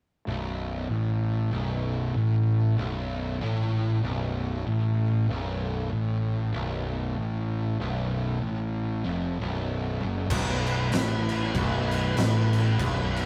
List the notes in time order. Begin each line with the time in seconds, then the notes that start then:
0.27 B0 B1
0.89 A1 A2
1.51 B0 B1
2.15 A1 A2
2.77 B0 B1
3.41 A1 A2
4.03 B0 B1
4.67 A1 A2
5.29 B0 B1
5.91 A1 A2
6.53 B0 B1
7.17 A1 A2
7.79 B0 B1
8.41 A1 A2
9.04 F1 F2
9.40 B0 B1
10.04 F#1 F#2
10.30 B0 B1 B3 F#4 B4, kick, crash
10.66 crash
10.92 A1 A2, snare, crash
11.29 crash
11.54 B0 B1, kick, crash
11.91 crash
12.17 A1 A2, snare, crash
12.53 crash
12.78 B0 B1, kick, crash
13.16 crash